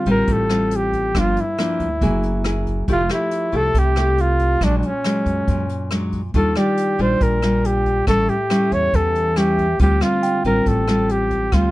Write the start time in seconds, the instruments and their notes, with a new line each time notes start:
Already playing: nylon-string guitar D3
0.06 upright bass A1, nylon-string guitar G3 C4 F4, kick, closed hi-hat
0.10 flugelhorn A#4
0.28 upright bass A1, nylon-string guitar A2, kick, closed hi-hat
0.33 flugelhorn A4
0.50 nylon-string guitar G3 C4 F4, cross-stick, closed hi-hat
0.71 closed hi-hat
0.76 flugelhorn G4
0.93 kick, closed hi-hat
1.15 upright bass G1, nylon-string guitar G2 F3 A#3 D4, kick, cross-stick, closed hi-hat
1.19 flugelhorn F4
1.37 flugelhorn E4, closed hi-hat
1.58 nylon-string guitar F3 A#3 D4, cross-stick, closed hi-hat
1.80 upright bass D2, kick, closed hi-hat
2.01 upright bass F#1, nylon-string guitar F#3 A#3 E4 G#4, kick, closed hi-hat
2.23 closed hi-hat
2.44 nylon-string guitar A#3 E4 G#4, cross-stick, closed hi-hat
2.66 kick, closed hi-hat
2.88 upright bass F1, nylon-string guitar F3 A3 E4 G4, kick, closed hi-hat
2.92 flugelhorn F4
3.10 nylon-string guitar A3 E4 G4, flugelhorn E4, cross-stick, closed hi-hat
3.31 closed hi-hat
3.52 upright bass C2, nylon-string guitar A3 E4 G4, flugelhorn A4, kick, closed hi-hat
3.74 upright bass C2, nylon-string guitar C3, kick, closed hi-hat
3.79 flugelhorn G4
3.96 nylon-string guitar A3 G4, cross-stick, closed hi-hat
4.18 flugelhorn F4, closed hi-hat
4.39 kick, closed hi-hat
4.61 upright bass A#1, nylon-string guitar A#2 F#3 G#3 D4, flugelhorn D4, kick, cross-stick, closed hi-hat
4.78 flugelhorn D4
4.83 flugelhorn C#4, closed hi-hat
5.04 nylon-string guitar F#3 G#3, cross-stick, closed hi-hat
5.26 upright bass F#2, kick, closed hi-hat
5.48 upright bass F#2, nylon-string guitar A#2, kick, closed hi-hat
5.69 closed hi-hat
5.91 nylon-string guitar F#3 G#3 D4, cross-stick, closed hi-hat
6.12 kick, closed hi-hat
6.34 upright bass D#2, nylon-string guitar D#3 G3 D4 F4, flugelhorn A4, kick, closed hi-hat
6.56 nylon-string guitar G3 D4 F4, flugelhorn G4, tine electric piano D5, cross-stick, closed hi-hat
6.77 closed hi-hat
6.99 upright bass A#1, nylon-string guitar G3 D4 F4, flugelhorn C5, kick, closed hi-hat
7.20 upright bass A#1, nylon-string guitar A#2, flugelhorn A#4, kick, closed hi-hat
7.42 nylon-string guitar G3 D4 F4, cross-stick, closed hi-hat
7.65 flugelhorn G4, closed hi-hat
7.86 kick, closed hi-hat
8.07 upright bass A1, nylon-string guitar A2 G3 C#4 E4, flugelhorn A4, kick, cross-stick, closed hi-hat
8.29 flugelhorn G4, closed hi-hat
8.50 nylon-string guitar G3 C#4 E4, cross-stick, closed hi-hat
8.72 upright bass E2, flugelhorn C#5, kick, closed hi-hat
8.94 upright bass E2, nylon-string guitar E3, flugelhorn A4, kick, closed hi-hat
9.15 closed hi-hat
9.36 nylon-string guitar G3 C#4 E4, flugelhorn G4, cross-stick, closed hi-hat
9.58 kick, closed hi-hat
9.79 upright bass D2, nylon-string guitar D3 G3 C4 F4, flugelhorn G4, kick, closed hi-hat
10.01 nylon-string guitar G3 C4 F4, flugelhorn F4, cross-stick, closed hi-hat
10.23 tine electric piano G5, closed hi-hat
10.44 upright bass A1, nylon-string guitar G3 C4 F4, flugelhorn A#4, kick, closed hi-hat
10.66 upright bass A1, nylon-string guitar A2, flugelhorn A4, kick, closed hi-hat
10.88 nylon-string guitar G3 C4 F4, cross-stick, closed hi-hat
11.09 flugelhorn G4, closed hi-hat
11.31 kick, closed hi-hat
11.52 upright bass D2, nylon-string guitar D3 G3 C4 F4, flugelhorn F4, kick, cross-stick, closed hi-hat